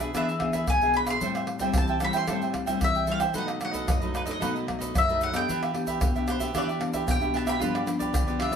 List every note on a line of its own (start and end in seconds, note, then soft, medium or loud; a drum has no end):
0.00 0.12 B2 medium
0.00 0.10 G#4 medium
0.00 0.14 G#4 medium
0.00 0.14 B4 medium
0.00 0.13 E5 medium
0.00 pandeiro medium
0.00 shaker medium
0.00 surdo soft
0.14 0.65 E3 medium
0.14 0.30 B3 medium
0.14 0.30 D4 medium
0.14 0.27 D4 medium
0.14 0.30 G#4 medium
0.14 0.28 G#4 medium
0.14 0.28 B4 medium
0.14 0.65 E5 loud
0.14 0.27 E5 medium
0.14 pandeiro medium
0.14 tamborim medium
0.14 shaker medium
0.14 surdo medium
0.28 0.41 G#4 soft
0.28 0.41 B4 soft
0.28 0.41 E5 soft
0.28 pandeiro soft
0.28 shaker soft
0.40 0.66 B3 medium
0.40 0.66 D4 soft
0.40 0.67 G#4 medium
0.40 muted cavaquinho stroke soft
0.40 pandeiro medium
0.40 tamborim medium
0.40 surdo soft
0.53 0.81 G#4 medium
0.53 0.80 B4 medium
0.53 0.80 E5 medium
0.53 pandeiro medium
0.53 shaker medium
0.53 surdo soft
0.67 1.19 B2 medium
0.67 0.94 G#5 loud
0.67 pandeiro medium
0.67 tamborim medium
0.67 shaker medium
0.67 surdo loud
0.81 1.17 B3 medium
0.81 1.18 D4 medium
0.81 1.18 G#4 medium
0.81 0.94 G#4 soft
0.81 0.94 B4 soft
0.81 0.94 E5 soft
0.81 pandeiro soft
0.81 shaker soft
0.94 1.07 D4 medium
0.94 1.07 G#4 medium
0.94 1.07 B4 medium
0.94 1.06 E5 medium
0.94 1.09 B5 loud
0.94 pandeiro medium
1.07 1.21 G#4 medium
1.07 1.21 B4 medium
1.07 1.20 E5 medium
1.07 1.77 C6 loud
1.07 pandeiro medium
1.07 tamborim medium
1.07 shaker medium
1.07 surdo soft
1.21 1.72 A2 medium
1.21 1.57 G3 medium
1.21 1.57 C4 medium
1.21 1.57 E4 medium
1.21 1.34 A4 medium
1.21 1.35 C5 medium
1.21 1.35 E5 medium
1.21 1.34 G5 medium
1.21 pandeiro medium
1.21 shaker medium
1.21 surdo medium
1.35 1.47 C5 soft
1.35 1.48 E5 soft
1.35 1.47 G5 soft
1.35 pandeiro soft
1.35 tamborim medium
1.35 shaker soft
1.47 muted cavaquinho stroke soft
1.47 pandeiro medium
1.47 tamborim medium
1.59 1.97 G3 medium
1.59 1.97 C4 medium
1.59 1.97 E4 medium
1.59 1.88 C5 medium
1.59 1.88 E5 medium
1.59 1.87 G5 medium
1.59 pandeiro medium
1.59 shaker medium
1.59 surdo soft
1.74 2.26 E3 medium
1.74 2.04 A5 medium
1.74 pandeiro medium
1.74 tamborim medium
1.74 shaker medium
1.74 surdo loud
1.88 2.00 C5 soft
1.88 2.01 E5 soft
1.88 2.01 G5 medium
1.88 pandeiro soft
1.88 shaker soft
2.00 2.24 G3 soft
2.00 2.24 C4 medium
2.00 2.24 E4 medium
2.00 2.13 A4 soft
2.00 2.14 C5 soft
2.00 2.13 E5 soft
2.00 2.12 G5 soft
2.00 pandeiro medium
2.00 tamborim medium
2.00 shaker medium
2.04 2.16 B5 loud
2.13 2.27 C5 medium
2.13 2.27 E5 medium
2.13 2.26 G5 medium
2.13 2.84 C6 loud
2.13 pandeiro medium
2.13 shaker medium
2.13 surdo soft
2.27 2.79 A2 medium
2.27 2.64 G3 medium
2.27 2.65 C4 medium
2.27 2.65 E4 medium
2.27 2.40 A4 medium
2.27 2.40 C5 medium
2.27 2.41 E5 medium
2.27 2.41 G5 medium
2.27 pandeiro medium
2.27 tamborim medium
2.27 shaker medium
2.27 surdo medium
2.42 2.53 C5 soft
2.42 2.53 E5 soft
2.42 2.53 G5 soft
2.42 pandeiro soft
2.42 shaker soft
2.53 muted cavaquinho stroke soft
2.53 pandeiro medium
2.53 tamborim medium
2.53 surdo soft
2.66 3.04 G3 medium
2.66 3.04 C4 medium
2.66 3.04 E4 medium
2.66 2.94 C5 medium
2.66 2.93 E5 medium
2.66 2.93 G5 medium
2.66 pandeiro medium
2.66 shaker medium
2.66 surdo soft
2.81 3.33 E3 medium
2.81 3.10 E5 medium
2.81 pandeiro medium
2.81 tamborim medium
2.81 shaker medium
2.81 surdo medium
2.95 3.06 C5 soft
2.95 3.07 E5 soft
2.95 3.07 G5 soft
2.95 pandeiro soft
2.95 shaker soft
3.07 3.24 G3 medium
3.07 3.24 C4 medium
3.07 3.24 E4 medium
3.07 3.20 A4 medium
3.07 3.20 C5 soft
3.07 3.20 E5 medium
3.07 3.19 G5 medium
3.07 pandeiro medium
3.07 shaker medium
3.11 3.18 F5 medium
3.20 3.34 C5 medium
3.20 3.33 E5 medium
3.20 3.33 G5 medium
3.20 pandeiro medium
3.20 tamborim medium
3.20 shaker medium
3.20 surdo soft
3.33 3.86 B2 medium
3.33 3.58 F#3 medium
3.33 3.58 A3 medium
3.33 3.46 D#4 medium
3.33 3.58 D#4 medium
3.33 3.47 A4 medium
3.33 3.47 B4 medium
3.33 3.45 D#5 medium
3.33 pandeiro medium
3.33 shaker medium
3.33 surdo medium
3.38 3.63 F#5 medium
3.47 3.59 A4 soft
3.47 3.60 B4 soft
3.47 3.60 D#5 soft
3.47 pandeiro soft
3.47 tamborim medium
3.47 shaker soft
3.60 3.97 F#3 medium
3.60 3.98 A3 medium
3.60 3.97 D#4 medium
3.60 muted cavaquinho stroke soft
3.60 pandeiro medium
3.60 tamborim medium
3.60 shaker medium
3.65 3.90 F#5 medium
3.71 4.00 A4 medium
3.71 3.99 B4 medium
3.71 3.99 D#5 medium
3.71 pandeiro medium
3.71 shaker medium
3.71 surdo soft
3.88 4.39 F#2 medium
3.88 4.16 D#5 medium
3.88 pandeiro medium
3.88 tamborim medium
3.88 shaker medium
3.88 surdo loud
4.00 4.24 F#3 medium
4.00 4.24 A3 medium
4.00 4.25 D#4 medium
4.00 4.13 A4 soft
4.00 4.13 B4 soft
4.00 4.13 D#5 soft
4.00 pandeiro soft
4.00 shaker soft
4.13 4.26 D#4 soft
4.13 4.26 A4 soft
4.13 4.26 B4 soft
4.13 4.22 B4 medium
4.13 4.24 D#5 medium
4.13 pandeiro medium
4.13 tamborim medium
4.13 shaker medium
4.25 4.37 F#3 medium
4.25 4.37 A3 medium
4.25 4.37 D#4 medium
4.25 4.39 A4 medium
4.25 4.40 B4 medium
4.25 4.39 D#5 medium
4.25 pandeiro medium
4.25 shaker medium
4.25 surdo soft
4.31 4.92 D#5 medium
4.40 4.92 B2 medium
4.40 4.64 F#3 medium
4.40 4.64 A3 soft
4.40 4.53 D#4 medium
4.40 4.64 D#4 medium
4.40 4.53 A4 medium
4.40 4.54 B4 medium
4.40 4.54 D#5 medium
4.40 pandeiro medium
4.40 tamborim medium
4.40 shaker medium
4.40 surdo medium
4.55 4.66 A4 soft
4.55 4.66 B4 soft
4.55 4.67 D#5 soft
4.55 pandeiro soft
4.55 shaker soft
4.67 4.93 F#3 medium
4.67 4.93 A3 medium
4.67 4.94 D#4 medium
4.67 muted cavaquinho stroke soft
4.67 pandeiro medium
4.67 tamborim medium
4.67 surdo soft
4.79 5.07 A4 soft
4.79 5.06 B4 medium
4.79 5.06 D#5 medium
4.79 pandeiro medium
4.79 shaker medium
4.79 surdo soft
4.95 5.45 F#2 medium
4.95 5.23 E5 loud
4.95 pandeiro medium
4.95 tamborim medium
4.95 shaker medium
4.95 surdo loud
5.08 5.31 F#3 medium
5.08 5.31 A3 medium
5.08 5.31 D#4 medium
5.08 5.21 A4 soft
5.08 5.21 B4 soft
5.08 5.20 D#5 soft
5.08 pandeiro soft
5.08 shaker soft
5.21 5.33 D#4 medium
5.21 5.34 A4 medium
5.21 5.34 B4 medium
5.21 5.33 D#5 medium
5.21 5.36 F#5 medium
5.21 pandeiro medium
5.21 shaker medium
5.33 5.70 B3 medium
5.33 5.70 D4 medium
5.33 5.70 G4 medium
5.33 5.47 A4 medium
5.33 5.47 B4 medium
5.33 5.47 D#5 medium
5.33 6.31 G5 medium
5.33 pandeiro medium
5.33 tamborim medium
5.33 shaker medium
5.33 surdo soft
5.48 5.99 E3 medium
5.48 5.60 D4 medium
5.48 5.61 G4 medium
5.48 5.61 B4 medium
5.48 5.61 E5 medium
5.48 pandeiro medium
5.48 shaker medium
5.48 surdo medium
5.63 5.75 G4 soft
5.63 5.75 B4 soft
5.63 5.74 E5 soft
5.63 pandeiro soft
5.63 tamborim medium
5.63 shaker soft
5.73 6.10 B3 medium
5.73 6.10 D4 soft
5.73 6.10 G4 medium
5.73 muted cavaquinho stroke soft
5.73 pandeiro medium
5.73 tamborim medium
5.87 6.14 G4 medium
5.87 6.14 B4 medium
5.87 6.13 E5 medium
5.87 pandeiro medium
5.87 shaker medium
5.87 surdo soft
6.01 6.52 B2 medium
6.01 pandeiro medium
6.01 tamborim medium
6.01 shaker medium
6.01 surdo loud
6.15 6.37 B3 medium
6.15 6.38 D4 medium
6.15 6.38 G4 medium
6.15 6.26 G4 soft
6.15 6.28 B4 soft
6.15 6.27 E5 medium
6.15 pandeiro soft
6.15 shaker soft
6.27 6.40 D4 soft
6.27 6.40 G4 soft
6.27 6.40 B4 medium
6.27 6.56 C5 medium
6.27 6.39 E5 medium
6.27 pandeiro medium
6.27 tamborim medium
6.27 shaker medium
6.40 6.50 B3 medium
6.40 6.50 D4 medium
6.40 6.50 G4 medium
6.40 6.53 G4 medium
6.40 6.53 B4 medium
6.40 6.53 E5 medium
6.40 pandeiro medium
6.40 shaker medium
6.40 surdo soft
6.54 7.05 E3 medium
6.54 6.70 B3 medium
6.54 6.67 D4 medium
6.54 6.71 D4 medium
6.54 6.67 G4 medium
6.54 6.71 G4 medium
6.54 6.67 B4 medium
6.54 7.06 D5 medium
6.54 6.66 E5 medium
6.54 pandeiro medium
6.54 tamborim medium
6.54 shaker medium
6.54 surdo medium
6.68 6.80 G4 soft
6.68 6.80 B4 soft
6.68 6.80 E5 soft
6.68 pandeiro soft
6.68 shaker soft
6.79 7.16 B3 medium
6.79 7.16 D4 medium
6.79 7.16 G4 medium
6.79 muted cavaquinho stroke soft
6.79 pandeiro medium
6.79 tamborim medium
6.93 7.21 G4 soft
6.93 7.20 B4 medium
6.93 7.20 E5 medium
6.93 pandeiro medium
6.93 shaker medium
6.93 surdo soft
7.06 7.58 B2 medium
7.06 pandeiro medium
7.06 tamborim medium
7.06 shaker medium
7.06 surdo medium
7.11 7.36 G5 medium
7.19 7.56 B3 medium
7.19 7.56 D4 medium
7.19 7.56 G4 medium
7.19 7.33 G4 soft
7.19 7.34 B4 soft
7.19 7.33 E5 medium
7.19 pandeiro soft
7.19 shaker soft
7.34 7.46 D4 medium
7.34 7.46 G4 medium
7.34 7.46 B4 medium
7.34 7.45 E5 medium
7.34 7.42 A5 medium
7.34 pandeiro medium
7.47 7.60 G4 medium
7.47 7.60 B4 medium
7.47 7.59 E5 medium
7.47 8.42 B5 loud
7.47 pandeiro medium
7.47 tamborim medium
7.47 shaker medium
7.47 surdo soft
7.59 8.11 G2 medium
7.59 7.83 F3 medium
7.59 7.83 B3 medium
7.59 7.83 D4 medium
7.59 7.73 F4 medium
7.59 7.73 G4 medium
7.59 7.73 B4 medium
7.59 7.73 D5 medium
7.59 pandeiro medium
7.59 shaker medium
7.59 surdo medium
7.75 7.86 G4 soft
7.75 7.87 B4 soft
7.75 7.87 D5 medium
7.75 pandeiro soft
7.75 tamborim medium
7.75 shaker soft
7.86 8.22 F3 medium
7.86 8.23 B3 medium
7.86 8.23 D4 medium
7.86 muted cavaquinho stroke soft
7.86 pandeiro medium
7.86 tamborim medium
7.86 shaker medium
7.99 8.27 G4 medium
7.99 8.26 B4 medium
7.99 8.26 D5 medium
7.99 pandeiro medium
7.99 shaker medium
7.99 surdo soft
8.13 8.56 D3 medium
8.13 pandeiro medium
8.13 tamborim medium
8.13 shaker medium
8.13 surdo loud
8.26 8.49 F3 medium
8.26 8.49 B3 medium
8.26 8.50 D4 medium
8.26 8.39 G4 soft
8.26 8.39 B4 soft
8.26 8.40 D5 medium
8.26 pandeiro soft
8.26 shaker soft
8.39 8.52 F4 soft
8.39 8.52 G4 soft
8.39 8.52 B4 soft
8.39 8.50 D5 soft
8.39 8.56 E5 medium
8.39 pandeiro medium
8.39 tamborim medium
8.51 8.56 F3 medium
8.51 8.56 B3 medium
8.51 8.56 D4 medium
8.51 8.56 D5 medium